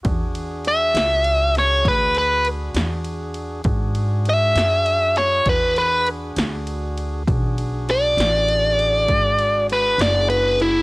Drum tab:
RD |xxxxxxxxxxxx|xxxxxxxxxxxx|xxxxxxxxxxxx|
SD |---o-o---o--|---o-o---o--|---o-----o--|
BD |o-----o-----|o-----o-----|o-----o-----|